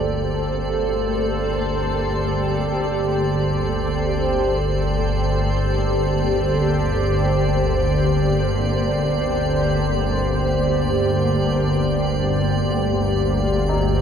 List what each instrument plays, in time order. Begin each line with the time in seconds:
Already playing: synth drone G1 D2, ambient pad A#3 G4 A4 C5 D5
13.66 ambient pad G3, tubular bells D#4